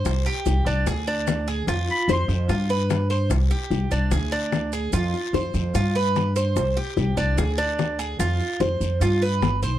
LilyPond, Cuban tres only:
\new Staff \with { instrumentName = "Cuban tres" } { \time 4/4 \key f \dorian \tempo 4 = 147 c''8 g'4 d'8 aes'8 d'4 aes'8 | f'4 c''4 f'8 b'4 c''8 | r8 g'4 d'8 aes'8 d'4 aes'8 | f'4 c''4 f'8 b'4 c''8~ |
c''8 g'4 d'8 aes'8 d'4 aes'8 | f'4 c''4 f'8 b'4 c''8 | }